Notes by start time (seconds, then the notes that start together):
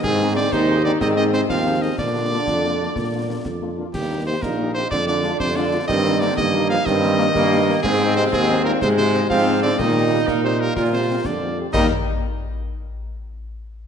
0.03 G#2 C4 G#4, concert bass drum, snare, crash
0.20 C4 D#4 G#4
0.35 D3 C4 D#4 G#4 D5
0.52 D#2 C3 D#4 C5, concert bass drum, snare
0.68 C4 D#4 G#4
0.85 D3 C4 D#4 G#4 D5
1.01 G#2 D#3 C4 D#5, concert bass drum, snare
1.17 D#3 C4 D#4 G#4 D#5, snare
1.33 C3 C4 D#4 G#4 C5, snare
1.49 D#2 F3 C4 F5, concert bass drum, snare
1.66 C4 D#4 G#4
1.82 D#3 C4 D#4 G#4 D#5
1.98 A#2 D3 D4 D5, concert bass drum, snare, crash
2.15 A#3 D4 F4
2.31 A#3 D4 F4
2.47 F2, concert bass drum, snare
2.64 A#3 D4 F4
2.80 A#3 D4 F4
2.96 A#2, concert bass drum, snare
3.12 A#3 D4 F4
3.29 A#3 D4 F4
3.45 F2, concert bass drum, snare
3.61 A#3 D4 F4
3.77 A#3 D4 F4
3.94 D#2 G2 G4, concert bass drum, snare, crash
4.10 A#3 D#4 G4
4.26 C3 A#3 D#4 G4 C5
4.42 A#1 A#2 D#4 A#4, concert bass drum, snare
4.58 A#3 D#4 G4
4.74 C3 A#3 D#4 G4 C5
4.91 F2 D3 D4 D5, concert bass drum, snare
5.07 D3 G#3 D4 F4 D5, snare
5.23 G#3 D4 F4, snare
5.40 F2 C3 C5, concert bass drum, snare
5.56 D3 G#3 D4 F4 D5
5.72 G#3 D4 F4
5.88 G2 D#3 C4 D#5, concert bass drum, snare, crash
6.05 A#3 D#4
6.20 D3 A#3 D#4 D5
6.37 G2 D#3 A#3 D#5, concert bass drum, snare
6.54 A#3 D#4
6.70 F3 A#3 D#4 F5
6.85 G2 D#3 C4 D#5, concert bass drum, snare
7.02 A#3 D#4, snare
7.19 A#3 D#4, snare
7.35 G2 A#3, concert bass drum, snare
7.51 A#3 D#4
7.67 A#3 D#4
7.83 G#2 C4 G#4, concert bass drum, snare, crash
8.00 G#3 C4 D#4
8.16 C3 G#3 C4 D#4 C5
8.32 D#2 G#2 G#4, concert bass drum, snare
8.49 G#3 C4 D#4
8.64 A#2 G#3 C4 D#4 A#4
8.81 G#2 C3 G#3 C5, concert bass drum, snare
8.97 C3 G#3 C4 F4 C5, snare
9.14 G#3 C4 F4, snare
9.30 G#2 F3 C4 F5, concert bass drum, snare
9.46 G#3 C4 F4
9.62 D3 G#3 C4 F4 D5
9.79 A#2 D#3 D#4 D#5, concert bass drum, snare, crash
9.95 G3 A#3 G4
10.11 G3 A#3 G4
10.27 A#2 A#4, concert bass drum, snare
10.43 C3 G3 A#3 G4 C5
10.59 A#2 G3 A#3 G4 A#4
10.75 A#2 F4 A#4, concert bass drum, snare
10.92 C3 G#3 C4 G4 C5
11.09 G#3 C4 G4
11.24 F2 D3 D4 D5, concert bass drum, snare
11.42 G#3 C4 G4
11.58 G#3 C4 G4
11.73 D#2 D#3 G3 A#3 D#4 G4 D#5, concert bass drum, snare, crash